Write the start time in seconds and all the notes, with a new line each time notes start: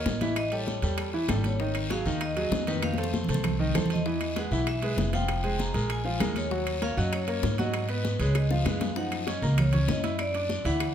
Already playing: A#3 A#4 C#5 D#5
0.05 A1, high bongo, low bongo, high conga, low timbale, short guiro
0.21 E3 E4 E5, high conga, high timbale, short guiro
0.36 D#5, high bongo, high conga, high timbale, long guiro, claves
0.52 G3 G4 A4 C#5, high bongo, high conga, high timbale
0.67 high bongo, high conga, low timbale, short guiro
0.82 E2 G3 G4 A4, high bongo, high conga, high timbale, short guiro
0.98 high bongo, high conga, high timbale, long guiro, claves
1.13 E3 E4 E5, high conga
1.28 G#1 G3 G4 A4, high bongo, low bongo, high conga, high timbale, low timbale, short guiro, claves
1.44 C#5, high bongo, high conga, high timbale, short guiro
1.60 D#3 D#4 D#5, high bongo, high conga, long guiro
1.75 high conga, high timbale, claves
1.90 F#3 F#4 G#4 F5, high bongo, high conga, high timbale, low timbale, short guiro
2.06 D#2 D#3 D#4 D#5, high conga, short guiro
2.21 D#5, high bongo, high conga, high timbale, long guiro, claves
2.37 F#3 F#4 G#4 D#5, high conga, high timbale
2.51 F2, high bongo, low bongo, high conga, low timbale, short guiro
2.67 D#3 D#4 B4 D#5, high conga, high timbale, short guiro
2.82 F5, high bongo, high conga, high timbale, long guiro, claves
2.94 high conga
2.98 A3 A4 C5, high bongo, high timbale
3.04 high conga
3.13 high bongo, high conga, low timbale, short guiro
3.24 low conga
3.28 C2 A3 A4 C5, high bongo, high timbale, short guiro
3.34 low conga
3.44 high bongo, low conga, high timbale, long guiro, claves
3.59 D#3 D#4 D#5
3.75 E2 A3 A4 C5, high bongo, low bongo, low conga, high timbale, low timbale, short guiro, claves
3.86 low conga
3.90 D#5, high bongo, high timbale, short guiro
3.96 low conga
4.06 E3 E4 D#5, high bongo, high conga, long guiro
4.21 high conga, high timbale, claves
4.36 G#3 G#4 B4 F#5, high bongo, high conga, high timbale, low timbale, short guiro
4.51 B1 E3 E4 E5, high conga, short guiro
4.67 E5, high bongo, high conga, high timbale, long guiro, claves
4.82 G#3 G#4 B4, high conga, high timbale
4.97 F1, high bongo, low bongo, high conga, low timbale, short guiro
5.13 F3 F4 F5 G5, high conga, high timbale, short guiro
5.28 high bongo, high conga, high timbale, long guiro, claves
5.44 G#3 G#4 C5, high bongo, high conga, high timbale
5.59 A#5, high bongo, high conga, low timbale, short guiro
5.74 A#1 G#3 G#4 A#4, high bongo, high conga, high timbale, short guiro
5.90 G#5, high bongo, high conga, high timbale, long guiro, claves
6.05 F3 F4 F5, high conga
6.20 D#2 G#3 G#4 A#4, high bongo, low bongo, high conga, high timbale, low timbale, short guiro, claves
6.36 C#5, high bongo, high conga, high timbale, short guiro
6.51 F#3 F#4 F#5, high bongo, high conga, long guiro
6.67 high conga, high timbale, claves
6.82 A#3 A#4 C#5 F5, high bongo, high conga, high timbale, low timbale, short guiro
6.97 F#2 F#3 F#4 D#5 F#5, high conga, short guiro
7.13 C#5, high bongo, high conga, high timbale, long guiro, claves
7.27 A#3 A#4 C#5, high conga, high timbale
7.43 G#2, high bongo, low bongo, high conga, low timbale, short guiro
7.58 F#3 F#4 D#5 F#5, high conga, high timbale, short guiro
7.74 high bongo, high conga, high timbale, long guiro, claves
7.89 B3 B4 D#5, high bongo, high conga, high timbale
8.04 high bongo, high conga, low timbale, short guiro
8.19 C#2 G#3 G#4 B4 C#5, high bongo, high conga, high timbale, short guiro
8.35 D#5, high bongo, high conga, high timbale, long guiro, claves
8.51 F3 F4 F5, low bongo, high conga
8.65 F#2 G#3 G#4 B4 F5, low bongo, high conga, high timbale, low timbale, short guiro, claves
8.81 low bongo, high conga, high timbale, short guiro
8.96 F3 D#4 F#5, high bongo, high conga, long guiro
9.12 high conga, high timbale, claves
9.27 C#4 C#5 D#5 C#6, high bongo, high conga, high timbale, low timbale, short guiro
9.42 C#2 A#3 A#4 A#5, high conga, short guiro
9.58 C#5, high bongo, high conga, low conga, high timbale, long guiro, claves
9.73 C#4 C#5 C#6, high conga, low conga, high timbale
9.82 C#5
9.88 F#2 D#5, high bongo, low bongo, high conga, low timbale, short guiro
10.03 E4 E5 E6, high conga, high timbale, short guiro
10.19 D5, high bongo, high conga, high timbale, long guiro, claves
10.34 D4 D5 D6, high bongo, high conga, high timbale
10.49 D5, high bongo, high conga, low timbale, short guiro
10.65 D2 E3 E4 E5 F#5, high bongo, high conga, high timbale, short guiro
10.80 high bongo, high conga, high timbale, long guiro, claves